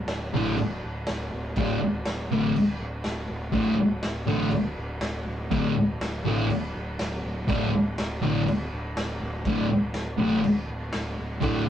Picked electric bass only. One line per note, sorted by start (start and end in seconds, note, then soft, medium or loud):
0.07 0.30 D1 medium
0.33 0.55 A1 loud
0.58 0.80 D1 loud
0.84 1.06 D1 medium
1.08 1.30 D1 medium
1.32 1.55 D1 medium
1.57 1.79 D1 medium
1.82 2.04 D1 medium
2.07 2.29 D1 medium
2.32 2.54 A1 loud
2.57 2.79 D1 medium
2.80 3.03 D1 medium
3.05 3.28 D1 loud
3.29 3.52 D1 medium
3.54 3.77 D1 loud
3.79 4.02 D1 medium
4.04 4.27 D1 medium
4.28 4.51 A1 medium
4.53 4.76 D1 medium
4.77 5.00 D1 medium
5.01 5.24 D1 medium
5.27 5.50 D1 medium
5.52 5.74 D1 loud
5.75 5.98 D1 loud
6.00 6.23 D1 medium
6.24 6.47 A1 loud
6.48 6.72 D1 medium
6.75 6.97 D1 medium
6.99 7.22 D1 medium
7.24 7.47 D1 medium
7.49 7.71 D1 loud
7.75 7.97 D1 medium
7.99 8.21 D1 loud
8.24 8.46 A1 medium
8.48 8.70 D1 medium
8.72 8.94 D1 medium
8.97 9.19 D1 medium
9.21 9.43 D1 loud
9.46 9.68 D1 loud
9.72 9.93 D1 medium
9.95 10.17 D1 medium
10.20 10.42 A1 medium
10.45 10.67 D1 medium
10.68 10.91 D1 medium
10.94 11.16 D1 medium
11.20 11.41 D1 medium
11.43 11.65 D1 loud